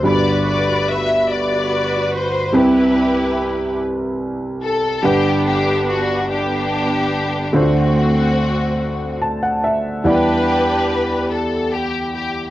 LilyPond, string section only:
\new Staff \with { instrumentName = "String section" } { \time 6/8 \key g \major \tempo 4. = 48 << { d''8 d''8 e''8 d''4 c''8 | b'4. r4 a'8 | g'8 g'8 fis'8 g'4. | fis'2 r4 |
b'4. a'8 g'8 g'8 | } \\ { <fis' b'>4. <fis' b'>4. | <e' g'>4. r4. | <b d'>4. <b d'>4. | <a c'>2 r4 |
<d' g'>4. r4. | } >> }